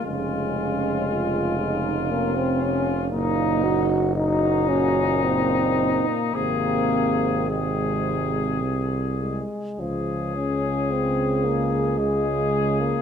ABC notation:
X:1
M:3/4
L:1/16
Q:1/4=55
K:Db
V:1 name="Cornet"
F12 | E3 z E8 | A4 A6 z2 | A8 A4 |]
V:2 name="French horn section"
D4 F2 E2 D4 | E4 G4 E4 | C8- C2 z2 | z4 A8 |]
V:3 name="Euphonium"
A,8 B, C D z | B,2 G2 E2 D2 C3 B, | B,4 A,4 z2 A,2 | F,2 D2 C2 B,2 A,3 B, |]
V:4 name="Euphonium" clef=bass
D,8 C,4 | B,,3 z B,,8 | C,4 C,6 z2 | D,8 D,4 |]
V:5 name="Tuba" clef=bass
F,,,12 | G,,,8- G,,,3 z | A,,,8 C,,2 z2 | D,,12 |]